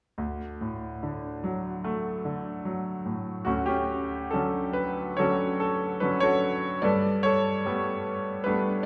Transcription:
0.18 D2
0.61 A2
1.03 D3
1.44 F#3
1.84 A3
2.25 D3
2.65 F#3
3.06 A2
3.45 D2 A3 C#4 F#4
3.66 C#4 G4
4.31 D3 F#3 C#4 A4
4.73 B4
5.17 D3 F#3 C#4 F#4 A4 C#5
5.60 A4
6.00 D3 F#3 C#4 B4
6.20 F#4 A4 C#5
6.82 G2 A4 B4 D5
7.23 A4 C#5
7.66 G3 A3 B3
8.44 G3 A3 B3 D4 B4

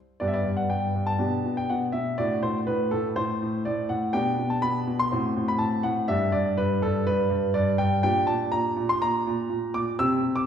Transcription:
0.20 G2 B3 G4 D5
0.28 E5
0.34 D5
0.44 G2
0.57 F#5
0.70 G2 G5
0.96 G2
1.07 A5
1.19 B2 D4 G4
1.45 B2
1.57 G5
1.70 B2 F#5
1.92 B2 E5
2.18 A2 D4 F#4 D5
2.43 A2 C5
2.67 A2 B4
2.91 A2 A4
3.16 A2 C5
3.42 A2
3.65 A2 D5
3.89 A2 F#5
4.13 B2 D4 G4 G5
4.38 B2
4.50 A5
4.62 B2 B5
4.87 B2
4.99 C6
5.12 A2 C4 F#4
5.36 A2
5.48 B5
5.59 A2 A5
5.83 A2 F#5
6.08 G2 D4 G4 E5
6.32 G2 D5
6.57 G2 B4
6.82 G2 A4
7.07 G2 B4
7.30 G2
7.54 G2 D5
7.78 G2 G5
8.03 A#2 D4 G4 G5
8.27 A#2 A5
8.52 A#2 A#5
8.77 A#2
8.89 C6
9.02 A#2 A#5
9.27 A#2
9.49 A#2
9.74 A#2 D6
9.99 C3 C4 G4 E6
10.23 C3
10.36 D6

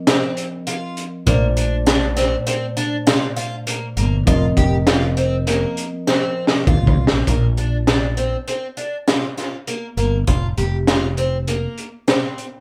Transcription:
Already playing: F3 C4 A#4 D#5
0.07 C4, snare, closed hi-hat
0.37 closed hi-hat
0.67 F4, closed hi-hat
0.97 closed hi-hat
1.26 A#1 A#2 A3 A#3 C5 D5, kick, closed hi-hat
1.57 D4, closed hi-hat
1.86 D4, snare, closed hi-hat
2.17 C4, snare, closed hi-hat
2.47 C4, closed hi-hat
2.77 D4, closed hi-hat
3.07 F4, snare, closed hi-hat
3.36 F4, closed hi-hat
3.67 A#3, closed hi-hat
3.97 G1 A#3, closed hi-hat
4.25 F1 F3 C4 F4 A#4 D#5, kick, closed hi-hat
4.57 F1 G4, kick, closed hi-hat
4.87 F4, snare, closed hi-hat
5.17 C4, closed hi-hat
5.47 A#3, snare, closed hi-hat
5.77 closed hi-hat
6.07 C4, snare
6.47 snare
6.67 D#2 F4, kick
6.82 D2
6.87 kick
6.97 C2
7.07 snare
7.12 A#1
7.27 A#1 A#3, kick, closed hi-hat
7.57 D4, closed hi-hat
7.87 D4, snare, closed hi-hat
8.17 C4, closed hi-hat
8.48 C4, closed hi-hat
8.77 D4, closed hi-hat
9.08 F4, snare, closed hi-hat
9.38 F4, snare, closed hi-hat
9.67 A#3, closed hi-hat
9.97 G1 A#3, closed hi-hat
10.27 F1 F4, kick, closed hi-hat
10.58 F1 G4, closed hi-hat
10.87 F4, snare, closed hi-hat
11.17 C4, closed hi-hat
11.47 A#3, closed hi-hat
11.78 closed hi-hat
12.08 C4, snare, closed hi-hat
12.38 closed hi-hat

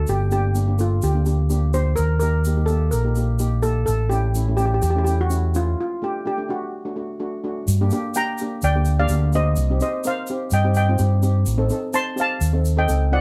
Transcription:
0.07 G1 G4, shaker
0.31 A#3 D4 G4, shaker
0.55 A#3 D4 G4, shaker
0.68 A#3 D4 G4
0.78 A#3 D4 F4 A4, shaker
1.02 D2 G4, shaker
1.15 A#3 D4 F4
1.26 A#3 D4 G4, shaker
1.50 A#3 D4 G4, shaker
1.74 A#3 D4 G4 C5, shaker
1.96 D#2 A#4, shaker
2.19 A#3 D#4 G4 A#4, shaker
2.44 A#3 D#4 G4, shaker
2.57 A#3 D#4 G4
2.66 A#3 D#4 G4 A4, shaker
2.91 A#1 A#4, shaker
3.04 A#3 D#4 G4
3.15 A#3 D#4 G4, shaker
3.39 A#3 D#4 G4, shaker
3.63 A#3 D#4 G4 A4, shaker
3.86 A1 A4, shaker
4.09 A3 C#4 E4 G4, shaker
4.35 A3 C#4 E4, shaker
4.48 A3 C#4 E4
4.57 A3 C#4 G4, shaker
4.66 G4
4.74 G4
4.82 E2 G4, shaker
4.90 G4
4.95 A3 C#4 E4 G4
5.04 A3 C#4 E4 G4, shaker
5.21 F#4
5.29 A3 C#4 E4, shaker
5.54 A3 C#4 E4 F4, shaker
5.81 F4
6.02 A3 D4 G4
6.25 A3 D4 G4
6.38 A3 D4 G4
6.49 A3 D4 F#4 G4
6.85 A3 D4 F#4
6.96 A3 D4 F#4
7.20 A3 D4 F#4
7.44 A3 D4 F#4
7.68 G2, shaker
7.81 A#3 D4 G4
7.91 A#3 D4 G4, shaker
8.14 A#3 D4 G4 G5 A#5, shaker
8.38 A#3 D4 G4, shaker
8.62 D2 D5 G5, shaker
8.75 A#3 D4 G4
8.85 shaker
8.99 A#3 D4 G4 D5 F5
9.08 D2 A#3 D4 G4, shaker
9.33 A#3 D4 G4 C5 D#5, shaker
9.56 C2, shaker
9.70 C4 D#4 G4
9.80 C4 D#4 G4 C5 D#5, shaker
10.04 C4 D#4 A#4 C5 F5, shaker
10.27 C4 D#4 G4, shaker
10.50 G2 D#5 G5, shaker
10.64 C4 D#4 G4
10.74 D#5 G5, shaker
10.89 C4 D#4 F4
10.98 G2 C4 D#4 G4, shaker
11.23 C4 D#4 G4, shaker
11.46 A1, shaker
11.58 C4 D#4 A4
11.69 C4 D#4 A4, shaker
11.93 C4 D#4 C5 A5 C6, shaker
12.16 C4 D#4 G4 F5, shaker
12.21 A5
12.41 D#2, shaker
12.53 C4 D#4 A4
12.65 shaker
12.77 C4 D#4 A4 D#5 G5
12.88 C#2 C4 D#4 A4, shaker
13.12 C4 D#4 F4 D5 F#5

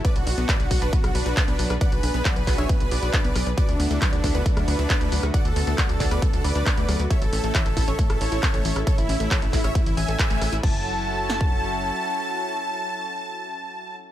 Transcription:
0.05 B3 D4 F#4 B4 D5, kick, closed hi-hat
0.16 B1 F#4, closed hi-hat
0.27 B1 D4 F#4, open hi-hat
0.38 B1 B3 F#4, closed hi-hat
0.49 F#3 B4 D5, kick, clap, closed hi-hat
0.60 B1 F#4 B4, closed hi-hat
0.71 B1 F#4, kick, open hi-hat
0.82 B1 D4 B4, closed hi-hat
0.93 B3 F#4, kick, closed hi-hat
1.04 B1 F#3 F#4, cross-stick, closed hi-hat
1.15 B1 D4 F#4 B4, open hi-hat
1.26 B1 F#4, closed hi-hat
1.37 D4, kick, clap, closed hi-hat
1.48 B1 B3, closed hi-hat
1.59 B1 F#3, open hi-hat
1.70 B1 B4, cross-stick, closed hi-hat
1.81 G#4 B4 D5 F#5, kick, closed hi-hat
1.92 B1 F#4 B4, closed hi-hat
2.03 B1 D4 B4, open hi-hat
2.14 B1 B3 B4, closed hi-hat
2.25 F#3 D5 F#5, kick, clap, closed hi-hat
2.36 B1 B4, closed hi-hat
2.47 B1 F#4 B4, kick, clap, open hi-hat
2.58 B1 D4 C#5 E5, cross-stick, closed hi-hat
2.69 B3 B4, kick, closed hi-hat
2.80 B1 F#3 B4, closed hi-hat
2.91 B1 F#4 B4 D5, open hi-hat
3.02 B1 F#4, closed hi-hat
3.13 D4, kick, clap, closed hi-hat
3.24 B1 B3, closed hi-hat
3.35 B1 F#3, cross-stick, open hi-hat
3.46 B1 B4, closed hi-hat
3.58 D3 A3 E4 F#4 B4 D5, kick, closed hi-hat
3.69 D2 D4, closed hi-hat
3.79 D2 B3 D4, open hi-hat
3.91 D2 A3 D4, closed hi-hat
4.02 F#3 B4 D5, kick, clap, closed hi-hat
4.13 D2 D4 F#4, closed hi-hat
4.24 D2 D4, kick, open hi-hat
4.35 D2 B3 D4 B4, closed hi-hat
4.46 A3 D4, kick, closed hi-hat
4.57 D2 F#3 D4, cross-stick, closed hi-hat
4.68 D2 D4 B4, open hi-hat
4.79 D2 D4, closed hi-hat
4.90 B3, kick, clap, closed hi-hat
5.01 D2 A3, closed hi-hat
5.12 D2 F#3, open hi-hat
5.23 D2 F#4, cross-stick, closed hi-hat
5.34 D4 F#4 D5 F#5, kick, closed hi-hat
5.45 D2 D4 A4, closed hi-hat
5.56 D2 B3 A4, open hi-hat
5.67 D2 A3 A4, closed hi-hat
5.78 F#3 D5 F#5, kick, clap, closed hi-hat
5.89 D2 F#4 A4, closed hi-hat
6.00 D2 D4 A4, kick, clap, open hi-hat
6.11 D2 B3 B4 D5, cross-stick, closed hi-hat
6.22 A3 A4, kick, closed hi-hat
6.33 D2 F#3 A4, closed hi-hat
6.44 D2 D4 B4 D5, open hi-hat
6.55 D2 D4, closed hi-hat
6.66 B3, kick, clap, closed hi-hat
6.77 D2 A3, closed hi-hat
6.88 D2 F#3, cross-stick, open hi-hat
6.99 D2 F#4, closed hi-hat
7.10 C#4 E4 A4 C#5 E5, kick, closed hi-hat
7.21 A1 E4 A4, closed hi-hat
7.32 A1 C#4 A4, open hi-hat
7.44 A1 A3 A4, closed hi-hat
7.55 E3 C#5 E5, kick, clap, closed hi-hat
7.66 A1 A4, closed hi-hat
7.77 A1 E4 A4, kick, open hi-hat
7.88 A1 C#4 A4 C#5, closed hi-hat
7.99 A3 A4, kick, closed hi-hat
8.10 A1 E3 A4, cross-stick, closed hi-hat
8.21 A1 E4 A4 C#5, open hi-hat
8.32 A1 E4, closed hi-hat
8.43 C#4, kick, clap, closed hi-hat
8.54 A1 A3, closed hi-hat
8.65 A1 E3, open hi-hat
8.76 A1 A4, cross-stick, closed hi-hat
8.87 A4 C#5, kick, closed hi-hat
8.98 A1 E4, closed hi-hat
9.09 A1 C#4 E4, open hi-hat
9.20 A1 A3 E4, closed hi-hat
9.31 E3 A4 C#5, kick, clap, closed hi-hat
9.42 A1 E4 A4, closed hi-hat
9.53 A1 E4, kick, clap, open hi-hat
9.64 A1 C#4 C#5 E5, cross-stick, closed hi-hat
9.75 A3 E4, kick, closed hi-hat
9.86 A1 E3 E4, closed hi-hat
9.97 A1 E3 E5 G#5, open hi-hat
10.08 A1 A4, closed hi-hat
10.19 C#5, kick, clap, closed hi-hat
10.30 A1 A3, closed hi-hat
10.41 A1 A4, cross-stick, open hi-hat
10.52 A1 E4, closed hi-hat
10.63 F#1 E3 F#3 C#4 E4 F#4 A4 A5, kick, crash
11.30 snare
11.41 kick

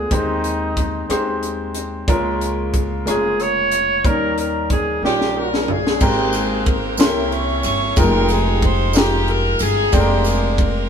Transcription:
Already playing: D3 G#3 B3 D4 F4 G#4 B4
0.11 D#2 D#3 G#3 C4 D#4 G4 C5, kick, closed hi-hat
0.44 closed hi-hat
0.77 kick, closed hi-hat
1.09 D#2 G#3 C4 D#4 G4 C5, cross-stick, closed hi-hat
1.43 closed hi-hat
1.75 closed hi-hat
2.08 C#2 C#3 G#3 A#3 C#4 F4 A#4, kick, closed hi-hat
2.41 closed hi-hat
2.74 kick, closed hi-hat
3.06 F1 G#3 A#3 C#4 F4 G#4 A#4, cross-stick, closed hi-hat
3.40 C#5, closed hi-hat
3.72 closed hi-hat
4.04 D#2 D#3 G3 A#3 C#4 D#4 A#4, kick, closed hi-hat
4.38 A#4, closed hi-hat
4.70 G#4, kick, closed hi-hat
5.02 A#1 G3 A#3 C#4 D#4 F4 G4, snare
5.21 snare
5.37 A#4
5.54 snare
5.68 G#4, floor tom
5.87 snare
6.00 G#1 G#2 G#3 A#3 C4 D#4 G4 A#4 G5, kick, crash, tambourine
6.33 G#4, ride, tambourine
6.66 A#4, kick, ride
6.97 C2 C3 A#3 C#4 E4 G4 C6, snare, ride, tambourine
7.02 A#4
7.32 C#5, ride
7.63 G1 C#5, ride, tambourine
7.96 F1 G#3 D#4 F4 G4 A#4 G5, kick, ride, tambourine
8.29 ride, tambourine
8.33 G#4
8.62 C5, kick, ride
8.93 G#3 D#4 F4 G4 A#4, snare, ride, tambourine
8.98 G4
9.28 A#4, ride
9.59 G1 G#4, ride, tambourine
9.92 F1 G#3 A#3 C4 D4 G4 A4 G5, kick, ride, tambourine
10.00 A#4
10.24 G#4, ride, tambourine
10.58 A#4, kick, ride

